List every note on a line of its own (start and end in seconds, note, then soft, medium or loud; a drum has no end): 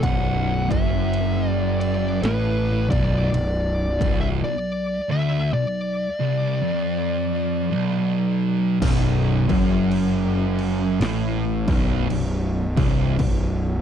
0.03 0.67 B0 loud
0.03 0.69 B1 loud
0.03 0.71 F#5 loud
0.03 kick loud
0.03 ride loud
0.70 2.19 F#1 medium
0.70 2.22 F#2 loud
0.70 1.49 E5 medium
0.70 kick loud
0.70 ride medium
1.14 ride medium
1.49 1.80 D5 medium
1.80 2.20 D5 medium
1.80 ride medium
2.22 2.86 A1 medium
2.22 2.88 A2 loud
2.22 2.87 B4 medium
2.22 snare loud
2.22 ride medium
2.89 3.30 B0 medium
2.89 3.31 B1 loud
2.89 4.20 D5 medium
2.89 kick loud
2.89 ride medium
3.33 3.97 B0 medium
3.33 3.87 B1 medium
3.33 ride loud
4.01 4.41 C1 loud
4.01 4.42 C2 loud
4.01 kick loud
4.01 ride medium
4.21 4.27 E5 medium
4.44 4.98 B1 medium
4.44 5.11 D5 medium
5.11 5.53 D2 loud
5.11 5.53 E5 medium
5.53 6.07 B1 medium
5.53 8.36 D5 medium
6.20 6.62 C2 medium
6.64 7.72 F2 loud
7.74 8.82 B1 medium
8.82 9.46 B0 loud
8.82 9.48 B1 loud
8.82 kick loud
8.82 crash loud
8.82 crash medium
9.49 10.97 F#1 medium
9.49 11.01 F#2 loud
9.49 kick loud
9.49 crash medium
9.91 crash medium
10.59 crash medium
11.00 11.64 A1 medium
11.00 11.67 A2 loud
11.00 snare loud
11.00 crash medium
11.36 snare soft
11.68 12.08 B0 loud
11.68 12.09 B1 loud
11.68 kick loud
11.68 crash medium
12.10 12.74 B0 medium
12.10 12.65 B1 medium
12.10 crash medium
12.77 13.17 C1 loud
12.77 13.18 C2 loud
12.77 kick loud
12.77 crash medium
13.19 13.82 B0 medium
13.19 13.74 B1 medium
13.19 kick loud
13.19 crash medium